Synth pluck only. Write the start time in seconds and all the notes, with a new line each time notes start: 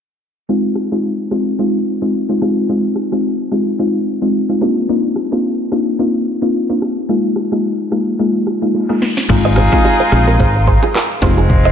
0.49 G#3 C4 D#4 F4
0.92 G#3 C4 D#4 F4
1.31 G#3 C4 D#4 F4
1.59 G#3 C4 D#4 F4
2.02 G#3 C4 D#4 F4
2.29 G#3 C4 D#4 F4
2.42 G#3 C4 D#4 F4
2.69 G#3 C4 D#4 F4
3.12 G#3 C4 D#4 F4
3.51 G#3 C4 D#4 F4
3.79 G#3 C4 D#4 F4
4.22 G#3 C4 D#4 F4
4.49 G#3 C4 D#4 F4
4.61 A#3 C4 D4 D#4 F4
4.89 A#3 C4 D4 D#4 F4
5.32 A#3 C4 D4 D#4 F4
5.72 A#3 C4 D4 D#4 F4
5.99 A#3 C4 D4 D#4 F4
6.42 A#3 C4 D4 D#4 F4
6.69 A#3 C4 D4 D#4 F4
7.09 G#3 A#3 D#4 F4
7.52 G#3 A#3 D#4 F4
7.91 G#3 A#3 D#4 F4
8.19 G#3 A#3 D#4 F4
8.62 G#3 A#3 D#4 F4
8.89 G#3 A#3 D#4 F4
9.29 G#3 C4 D#4 F4
9.72 G#3 C4 D#4 F4
10.12 G#3 C4 D#4 F4
11.22 G#3 C4 D#4 F4